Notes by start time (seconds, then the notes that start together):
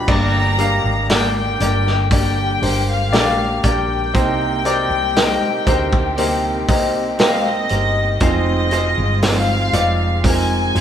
0.07 G1 G2 D3 G3 A#3 D4 G4 A#4 D5 A#5, kick, crash
0.58 G3 A#3 D4 G4 A#4 F5, hi-hat pedal, open hi-hat
0.84 G#1
1.08 G3 A#3 D4 G4 A#4 D5, snare, hi-hat pedal, open hi-hat
1.13 G5
1.37 G5
1.59 G1 G3 A#3 D4 G4 A#4 D5, hi-hat pedal, open hi-hat
1.87 snare
2.10 G2 D3 G3 A#3 D4 G4 A#4 D5 G5, kick, hi-hat pedal, open hi-hat
2.62 G1 A#3 D4 G4 A#4 C5, hi-hat pedal, open hi-hat
2.89 F5
3.12 A#1 G3 A#3 D4 G4 A#4 D5, snare, hi-hat pedal, open hi-hat
3.63 A#1 G3 A#3 D4 G4 A#4 D5 G5, kick, hi-hat pedal, open hi-hat
4.14 C2 C3 G3 A#3 C4 D#4 G4 A#4 C5, kick, hi-hat pedal, open hi-hat
4.64 A#3 C4 D#4 G4 A#4 D5, hi-hat pedal, open hi-hat
4.90 C2
5.15 G3 A#3 C4 D#4 G4 A#4 D#5, snare, hi-hat pedal, open hi-hat
5.67 D2 C4 D#4 G4 A#4 C5, kick, hi-hat pedal, open hi-hat
5.93 kick
6.17 C3 G3 A#3 C4 D#4 G4 A#4 C5, hi-hat pedal, open hi-hat
6.68 C2 C4 D#4 G4 A#4 D#5, kick, hi-hat pedal, open hi-hat
7.18 G3 A#3 C4 D#4 G4 A#4 D#5, snare, hi-hat pedal, open hi-hat
7.23 F5
7.48 D#5
7.69 G1 C4 D#4 G4 A#4 D#5, hi-hat pedal, open hi-hat
8.20 F1 F3 G#3 C4 D#4 F4 G#4 C5, kick, hi-hat pedal, open hi-hat
8.24 D#5
8.71 C4 D#4 F4 G#4 C5, hi-hat pedal, open hi-hat
8.98 G1
9.22 F3 C4 D#4 F4 G#4 C5, snare, hi-hat pedal, open hi-hat
9.26 F5
9.72 F1 C4 D#4 F4 G#4 D5, hi-hat pedal, open hi-hat
10.24 F3 C4 D#4 F4 G#4 A#4 G#5, kick, hi-hat pedal, open hi-hat
10.75 F1 C4 D#4 F4 G#4 C5, hi-hat pedal, open hi-hat